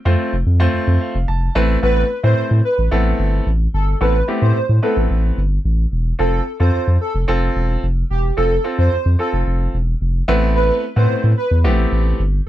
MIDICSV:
0, 0, Header, 1, 4, 480
1, 0, Start_track
1, 0, Key_signature, 0, "minor"
1, 0, Tempo, 545455
1, 1609, Time_signature, 4, 2, 24, 8
1, 10986, End_track
2, 0, Start_track
2, 0, Title_t, "Digital synth lead"
2, 0, Program_c, 0, 84
2, 1610, Note_on_c, 0, 71, 109
2, 1774, Note_off_c, 0, 71, 0
2, 1970, Note_on_c, 0, 72, 88
2, 2134, Note_off_c, 0, 72, 0
2, 2331, Note_on_c, 0, 71, 83
2, 2412, Note_off_c, 0, 71, 0
2, 3292, Note_on_c, 0, 69, 79
2, 3373, Note_off_c, 0, 69, 0
2, 3530, Note_on_c, 0, 71, 100
2, 3694, Note_off_c, 0, 71, 0
2, 3891, Note_on_c, 0, 72, 84
2, 4055, Note_off_c, 0, 72, 0
2, 4250, Note_on_c, 0, 69, 80
2, 4332, Note_off_c, 0, 69, 0
2, 5451, Note_on_c, 0, 69, 107
2, 5615, Note_off_c, 0, 69, 0
2, 5810, Note_on_c, 0, 72, 87
2, 5974, Note_off_c, 0, 72, 0
2, 6171, Note_on_c, 0, 69, 86
2, 6252, Note_off_c, 0, 69, 0
2, 7130, Note_on_c, 0, 67, 78
2, 7212, Note_off_c, 0, 67, 0
2, 7371, Note_on_c, 0, 69, 101
2, 7535, Note_off_c, 0, 69, 0
2, 7731, Note_on_c, 0, 72, 81
2, 7895, Note_off_c, 0, 72, 0
2, 8091, Note_on_c, 0, 69, 77
2, 8172, Note_off_c, 0, 69, 0
2, 9289, Note_on_c, 0, 71, 110
2, 9454, Note_off_c, 0, 71, 0
2, 9649, Note_on_c, 0, 72, 87
2, 9813, Note_off_c, 0, 72, 0
2, 10008, Note_on_c, 0, 71, 89
2, 10091, Note_off_c, 0, 71, 0
2, 10986, End_track
3, 0, Start_track
3, 0, Title_t, "Grand piano"
3, 0, Program_c, 1, 0
3, 46, Note_on_c, 1, 57, 90
3, 47, Note_on_c, 1, 60, 87
3, 48, Note_on_c, 1, 65, 82
3, 51, Note_on_c, 1, 72, 101
3, 291, Note_off_c, 1, 57, 0
3, 292, Note_off_c, 1, 60, 0
3, 293, Note_off_c, 1, 65, 0
3, 294, Note_off_c, 1, 72, 0
3, 525, Note_on_c, 1, 57, 96
3, 526, Note_on_c, 1, 60, 86
3, 528, Note_on_c, 1, 65, 89
3, 530, Note_on_c, 1, 72, 104
3, 888, Note_on_c, 1, 77, 71
3, 1015, Note_off_c, 1, 57, 0
3, 1015, Note_off_c, 1, 60, 0
3, 1016, Note_off_c, 1, 65, 0
3, 1017, Note_off_c, 1, 72, 0
3, 1112, Note_off_c, 1, 77, 0
3, 1128, Note_on_c, 1, 81, 77
3, 1366, Note_on_c, 1, 57, 101
3, 1368, Note_on_c, 1, 60, 93
3, 1368, Note_on_c, 1, 64, 92
3, 1370, Note_on_c, 1, 71, 108
3, 1559, Note_off_c, 1, 57, 0
3, 1560, Note_off_c, 1, 60, 0
3, 1561, Note_off_c, 1, 64, 0
3, 1561, Note_off_c, 1, 71, 0
3, 1574, Note_off_c, 1, 81, 0
3, 1606, Note_on_c, 1, 57, 80
3, 1608, Note_on_c, 1, 59, 71
3, 1608, Note_on_c, 1, 60, 69
3, 1610, Note_on_c, 1, 64, 72
3, 1610, Note_on_c, 1, 71, 86
3, 1790, Note_off_c, 1, 57, 0
3, 1791, Note_off_c, 1, 59, 0
3, 1792, Note_off_c, 1, 60, 0
3, 1792, Note_off_c, 1, 64, 0
3, 1792, Note_off_c, 1, 71, 0
3, 1966, Note_on_c, 1, 57, 76
3, 1968, Note_on_c, 1, 71, 67
3, 1969, Note_on_c, 1, 60, 71
3, 1970, Note_on_c, 1, 64, 69
3, 1971, Note_on_c, 1, 72, 83
3, 2272, Note_off_c, 1, 57, 0
3, 2273, Note_off_c, 1, 71, 0
3, 2274, Note_off_c, 1, 60, 0
3, 2274, Note_off_c, 1, 64, 0
3, 2275, Note_off_c, 1, 72, 0
3, 2564, Note_on_c, 1, 57, 88
3, 2565, Note_on_c, 1, 59, 86
3, 2567, Note_on_c, 1, 60, 82
3, 2568, Note_on_c, 1, 64, 87
3, 2568, Note_on_c, 1, 69, 98
3, 3054, Note_off_c, 1, 57, 0
3, 3055, Note_off_c, 1, 59, 0
3, 3056, Note_off_c, 1, 60, 0
3, 3056, Note_off_c, 1, 64, 0
3, 3056, Note_off_c, 1, 69, 0
3, 3525, Note_on_c, 1, 57, 75
3, 3526, Note_on_c, 1, 59, 72
3, 3529, Note_on_c, 1, 60, 73
3, 3529, Note_on_c, 1, 64, 73
3, 3531, Note_on_c, 1, 69, 88
3, 3649, Note_off_c, 1, 57, 0
3, 3649, Note_off_c, 1, 59, 0
3, 3651, Note_off_c, 1, 60, 0
3, 3651, Note_off_c, 1, 64, 0
3, 3652, Note_off_c, 1, 69, 0
3, 3765, Note_on_c, 1, 57, 81
3, 3766, Note_on_c, 1, 59, 72
3, 3768, Note_on_c, 1, 60, 72
3, 3769, Note_on_c, 1, 64, 74
3, 3770, Note_on_c, 1, 67, 86
3, 4011, Note_off_c, 1, 57, 0
3, 4011, Note_off_c, 1, 59, 0
3, 4012, Note_off_c, 1, 60, 0
3, 4013, Note_off_c, 1, 64, 0
3, 4013, Note_off_c, 1, 67, 0
3, 4246, Note_on_c, 1, 57, 77
3, 4247, Note_on_c, 1, 59, 75
3, 4248, Note_on_c, 1, 60, 71
3, 4249, Note_on_c, 1, 64, 73
3, 4250, Note_on_c, 1, 71, 86
3, 4735, Note_off_c, 1, 57, 0
3, 4736, Note_off_c, 1, 59, 0
3, 4736, Note_off_c, 1, 60, 0
3, 4737, Note_off_c, 1, 64, 0
3, 4737, Note_off_c, 1, 71, 0
3, 5445, Note_on_c, 1, 60, 82
3, 5447, Note_on_c, 1, 65, 69
3, 5449, Note_on_c, 1, 69, 87
3, 5630, Note_off_c, 1, 60, 0
3, 5631, Note_off_c, 1, 65, 0
3, 5632, Note_off_c, 1, 69, 0
3, 5805, Note_on_c, 1, 60, 75
3, 5807, Note_on_c, 1, 65, 71
3, 5809, Note_on_c, 1, 69, 84
3, 6112, Note_off_c, 1, 60, 0
3, 6113, Note_off_c, 1, 65, 0
3, 6114, Note_off_c, 1, 69, 0
3, 6405, Note_on_c, 1, 60, 95
3, 6407, Note_on_c, 1, 65, 86
3, 6410, Note_on_c, 1, 69, 104
3, 6895, Note_off_c, 1, 60, 0
3, 6896, Note_off_c, 1, 65, 0
3, 6897, Note_off_c, 1, 69, 0
3, 7366, Note_on_c, 1, 60, 78
3, 7368, Note_on_c, 1, 65, 72
3, 7371, Note_on_c, 1, 69, 90
3, 7489, Note_off_c, 1, 60, 0
3, 7490, Note_off_c, 1, 65, 0
3, 7492, Note_off_c, 1, 69, 0
3, 7606, Note_on_c, 1, 60, 80
3, 7608, Note_on_c, 1, 65, 71
3, 7609, Note_on_c, 1, 69, 84
3, 7851, Note_off_c, 1, 60, 0
3, 7852, Note_off_c, 1, 65, 0
3, 7853, Note_off_c, 1, 69, 0
3, 8086, Note_on_c, 1, 60, 75
3, 8088, Note_on_c, 1, 65, 71
3, 8091, Note_on_c, 1, 69, 85
3, 8575, Note_off_c, 1, 60, 0
3, 8576, Note_off_c, 1, 65, 0
3, 8578, Note_off_c, 1, 69, 0
3, 9047, Note_on_c, 1, 57, 99
3, 9047, Note_on_c, 1, 59, 92
3, 9048, Note_on_c, 1, 60, 91
3, 9050, Note_on_c, 1, 64, 87
3, 9051, Note_on_c, 1, 71, 111
3, 9528, Note_off_c, 1, 57, 0
3, 9528, Note_off_c, 1, 59, 0
3, 9528, Note_off_c, 1, 60, 0
3, 9529, Note_off_c, 1, 64, 0
3, 9530, Note_off_c, 1, 71, 0
3, 9646, Note_on_c, 1, 57, 75
3, 9647, Note_on_c, 1, 59, 71
3, 9648, Note_on_c, 1, 60, 71
3, 9650, Note_on_c, 1, 64, 73
3, 9651, Note_on_c, 1, 71, 88
3, 9952, Note_off_c, 1, 57, 0
3, 9953, Note_off_c, 1, 59, 0
3, 9953, Note_off_c, 1, 60, 0
3, 9954, Note_off_c, 1, 64, 0
3, 9955, Note_off_c, 1, 71, 0
3, 10246, Note_on_c, 1, 57, 91
3, 10246, Note_on_c, 1, 59, 83
3, 10247, Note_on_c, 1, 60, 83
3, 10249, Note_on_c, 1, 64, 84
3, 10250, Note_on_c, 1, 67, 102
3, 10735, Note_off_c, 1, 57, 0
3, 10735, Note_off_c, 1, 59, 0
3, 10736, Note_off_c, 1, 60, 0
3, 10737, Note_off_c, 1, 64, 0
3, 10737, Note_off_c, 1, 67, 0
3, 10986, End_track
4, 0, Start_track
4, 0, Title_t, "Sub bass"
4, 0, Program_c, 2, 38
4, 49, Note_on_c, 2, 41, 105
4, 142, Note_off_c, 2, 41, 0
4, 289, Note_on_c, 2, 29, 91
4, 382, Note_off_c, 2, 29, 0
4, 408, Note_on_c, 2, 41, 109
4, 596, Note_off_c, 2, 41, 0
4, 649, Note_on_c, 2, 41, 48
4, 697, Note_off_c, 2, 41, 0
4, 768, Note_on_c, 2, 41, 106
4, 862, Note_off_c, 2, 41, 0
4, 1009, Note_on_c, 2, 29, 97
4, 1103, Note_off_c, 2, 29, 0
4, 1128, Note_on_c, 2, 29, 98
4, 1316, Note_off_c, 2, 29, 0
4, 1368, Note_on_c, 2, 33, 102
4, 1556, Note_off_c, 2, 33, 0
4, 1608, Note_on_c, 2, 33, 111
4, 1796, Note_off_c, 2, 33, 0
4, 1968, Note_on_c, 2, 45, 98
4, 2062, Note_off_c, 2, 45, 0
4, 2088, Note_on_c, 2, 45, 49
4, 2136, Note_off_c, 2, 45, 0
4, 2207, Note_on_c, 2, 45, 99
4, 2302, Note_off_c, 2, 45, 0
4, 2448, Note_on_c, 2, 33, 99
4, 2542, Note_off_c, 2, 33, 0
4, 2568, Note_on_c, 2, 33, 94
4, 2756, Note_off_c, 2, 33, 0
4, 2808, Note_on_c, 2, 31, 96
4, 2996, Note_off_c, 2, 31, 0
4, 3047, Note_on_c, 2, 33, 96
4, 3235, Note_off_c, 2, 33, 0
4, 3287, Note_on_c, 2, 31, 99
4, 3475, Note_off_c, 2, 31, 0
4, 3528, Note_on_c, 2, 33, 109
4, 3715, Note_off_c, 2, 33, 0
4, 3889, Note_on_c, 2, 45, 95
4, 3983, Note_off_c, 2, 45, 0
4, 4009, Note_on_c, 2, 45, 52
4, 4057, Note_off_c, 2, 45, 0
4, 4128, Note_on_c, 2, 45, 97
4, 4222, Note_off_c, 2, 45, 0
4, 4369, Note_on_c, 2, 33, 99
4, 4463, Note_off_c, 2, 33, 0
4, 4489, Note_on_c, 2, 33, 92
4, 4676, Note_off_c, 2, 33, 0
4, 4729, Note_on_c, 2, 31, 92
4, 4916, Note_off_c, 2, 31, 0
4, 4969, Note_on_c, 2, 33, 108
4, 5156, Note_off_c, 2, 33, 0
4, 5208, Note_on_c, 2, 28, 91
4, 5396, Note_off_c, 2, 28, 0
4, 5449, Note_on_c, 2, 29, 108
4, 5636, Note_off_c, 2, 29, 0
4, 5809, Note_on_c, 2, 41, 95
4, 5902, Note_off_c, 2, 41, 0
4, 5929, Note_on_c, 2, 41, 50
4, 5977, Note_off_c, 2, 41, 0
4, 6049, Note_on_c, 2, 41, 93
4, 6143, Note_off_c, 2, 41, 0
4, 6288, Note_on_c, 2, 29, 95
4, 6382, Note_off_c, 2, 29, 0
4, 6409, Note_on_c, 2, 29, 102
4, 6596, Note_off_c, 2, 29, 0
4, 6649, Note_on_c, 2, 28, 94
4, 6836, Note_off_c, 2, 28, 0
4, 6890, Note_on_c, 2, 29, 101
4, 7077, Note_off_c, 2, 29, 0
4, 7129, Note_on_c, 2, 28, 89
4, 7316, Note_off_c, 2, 28, 0
4, 7369, Note_on_c, 2, 29, 116
4, 7556, Note_off_c, 2, 29, 0
4, 7730, Note_on_c, 2, 41, 96
4, 7823, Note_off_c, 2, 41, 0
4, 7850, Note_on_c, 2, 41, 48
4, 7898, Note_off_c, 2, 41, 0
4, 7970, Note_on_c, 2, 41, 102
4, 8063, Note_off_c, 2, 41, 0
4, 8210, Note_on_c, 2, 29, 98
4, 8303, Note_off_c, 2, 29, 0
4, 8330, Note_on_c, 2, 29, 93
4, 8517, Note_off_c, 2, 29, 0
4, 8569, Note_on_c, 2, 28, 91
4, 8756, Note_off_c, 2, 28, 0
4, 8809, Note_on_c, 2, 29, 102
4, 8996, Note_off_c, 2, 29, 0
4, 9049, Note_on_c, 2, 33, 98
4, 9423, Note_off_c, 2, 33, 0
4, 9649, Note_on_c, 2, 45, 102
4, 9742, Note_off_c, 2, 45, 0
4, 9769, Note_on_c, 2, 45, 48
4, 9817, Note_off_c, 2, 45, 0
4, 9888, Note_on_c, 2, 45, 102
4, 9982, Note_off_c, 2, 45, 0
4, 10129, Note_on_c, 2, 40, 100
4, 10249, Note_on_c, 2, 33, 99
4, 10262, Note_off_c, 2, 40, 0
4, 10436, Note_off_c, 2, 33, 0
4, 10489, Note_on_c, 2, 33, 100
4, 10676, Note_off_c, 2, 33, 0
4, 10729, Note_on_c, 2, 31, 103
4, 10916, Note_off_c, 2, 31, 0
4, 10986, End_track
0, 0, End_of_file